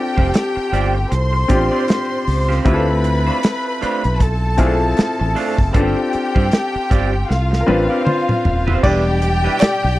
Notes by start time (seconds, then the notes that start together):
Already playing: C4 D4 F4 G4 A4 G5
0.17 F1 C4 F4 G4 C5, kick
0.34 muted clean electric guitar stroke, snare, closed hi-hat
0.56 muted clean electric guitar stroke, muted fingered electric bass stroke
0.72 G1 C4 F4 G4 D5, closed hi-hat
0.95 muted clean electric guitar stroke
1.11 C2 C5 C6, muted clean electric guitar stroke, closed hi-hat
1.33 muted clean electric guitar stroke
1.48 A1 C4 D4 F4 G4 C5, kick, closed hi-hat
1.71 C4 F4 G4 D5
1.88 muted clean electric guitar stroke, snare, closed hi-hat
2.10 muted clean electric guitar stroke
2.27 C#2, open hi-hat
2.48 C4 F4 G4 C5, snare
2.65 D2 A3 C4 D4 E4 F4 G4 B4 C5 B5, kick, closed hi-hat
2.74 A4
2.87 muted clean electric guitar stroke
3.04 muted clean electric guitar stroke, closed hi-hat
3.27 A3 D4 F4 C5
3.43 snare, closed hi-hat
3.65 muted clean electric guitar stroke
3.81 A3 D4 F4 C5, muted fingered electric bass stroke, closed hi-hat
4.04 B1, muted clean electric guitar stroke, closed hi-hat
4.20 A4 A5, muted clean electric guitar stroke, kick, closed hi-hat
4.57 A3 C4 D4 E4 F4 G#4 C5, kick, closed hi-hat
4.66 A4
4.80 muted clean electric guitar stroke
4.97 muted clean electric guitar stroke, snare, closed hi-hat
5.19 A1, muted clean electric guitar stroke
5.35 A3 D4 F4 C5, open hi-hat
5.57 F#1, muted clean electric guitar stroke, kick
5.73 G1 B3 C4 D4 F4 G4 A4 C5 G5, kick, closed hi-hat
5.80 C4
5.96 muted clean electric guitar stroke
6.13 muted clean electric guitar stroke, muted fingered electric bass stroke, closed hi-hat
6.35 G2 C4 F4 G4 C5, kick
6.52 muted clean electric guitar stroke, snare, closed hi-hat
6.74 muted clean electric guitar stroke, muted fingered electric bass stroke
6.90 G1 C4 F4 G4 D5, kick, closed hi-hat
7.13 muted clean electric guitar stroke
7.29 C2 F4 F5, muted clean electric guitar stroke, snare
7.51 muted clean electric guitar stroke, snare
7.61 A#4
7.67 A1 C4 D4 F4 G4 B4 C5, high tom
7.90 C4 F4 G4 D5
8.05 F4 C5, muted clean electric guitar stroke, mid tom
8.28 muted clean electric guitar stroke, mid tom
8.45 D#1, floor tom
8.67 C4 F4 G4 C5, floor tom
8.83 E1 B2 G3 D4 E4 G4 B4 D5 G5, kick, crash
9.06 muted clean electric guitar stroke
9.22 muted clean electric guitar stroke, closed hi-hat
9.44 G3 D4 E4 B4
9.60 G4 D5, muted clean electric guitar stroke, muted fingered electric bass stroke, snare, clap, closed hi-hat
9.83 B1, muted clean electric guitar stroke